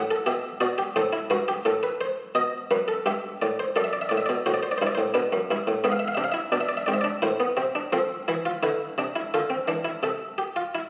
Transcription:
Already playing: A2 G4 F#5
0.11 A4
0.26 B2 G4 E5
0.60 B2 F#4 D5
0.78 G4
0.96 A2 A4 C5
1.13 E4
1.30 G2 F#4 B4
1.48 G4
1.65 A2 A4
1.83 B4
2.01 C5
2.35 B2 D#5
2.71 F#2 B4
2.88 A4
3.06 G2 G4 E5
3.42 A2 D5
3.59 C5
3.76 F#2 A4 D5
3.84 E5
3.93 D5
4.01 E5
4.09 A2 D5
4.17 E5
4.26 B2 D5
4.46 A2 F#4 C5
4.54 D5
4.63 C5
4.71 D5
4.78 G2 C5
4.82 E4
4.87 D5
4.95 A2 C5
5.14 B2 D4 B4
5.32 F#2
5.51 G2 E4
5.67 A2
5.84 G#2 B3 E5
5.92 F5
5.99 E5
6.08 F5
6.15 C3 D4 E5
6.24 F5
6.32 E4 E5
6.52 B2 D4 D5
6.61 E5
6.69 D5
6.77 E5
6.86 G#2 C4 D5
6.94 E5
7.01 D4 D5
7.22 A2 E4 C5
7.40 B3
7.57 C3 C4
7.75 D4
7.93 F3 C4 A4
8.28 E3 E4
8.45 F4
8.63 D3 E4 B4
8.98 C3 D4
9.16 E4
9.34 D3 F4 A4
9.50 C4
9.68 E3 D4
9.85 E4
10.03 C3 A4 E5
10.38 G4
10.56 F4
10.75 E4

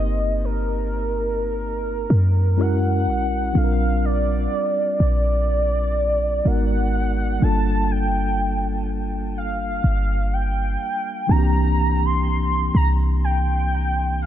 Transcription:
Already playing: G1 A#3 C4 D#4 G4 A#4 D#5
0.45 A#4
2.10 F#2
2.57 G#3 C#4 E4 F#4 A#4 F#5
3.07 A#1
3.53 A#1 G3 C4 D4 F4
3.57 A4 F5
3.64 A#4
4.05 D5
5.00 A#1 D5
6.44 G#1 G#3 B3 D#4 F#4 A#4 F#5
7.40 G1 G3 A#3 D4 F4 A5
7.45 A4
7.91 G5
9.37 F5
9.84 G1
10.33 G5
11.27 C2 E3 A#3 C4 D4 A#5
11.32 F#4
11.38 G4
12.06 C6
12.75 C2 A#5
13.24 G5
14.21 F5

